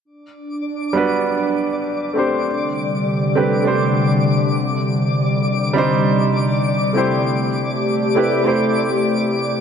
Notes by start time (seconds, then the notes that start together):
0.05 D4 D5 D6
0.93 G3 B3 D4 F#4
0.97 B4
2.14 A3 C4 D4 G4
2.19 C5
2.45 C3 D3 G3
3.35 A3 C4 D4 G4 B4
3.63 A3 C4 D4 G4
3.68 C5
4.56 G3
5.73 G3 C4 D4 D#4
5.78 C5
6.93 A3 C4 E4 G4
6.98 C5
7.26 A3 G4
8.15 A3 C4 E4 G4 B4
8.43 A3 C4 E4 G4
8.48 C5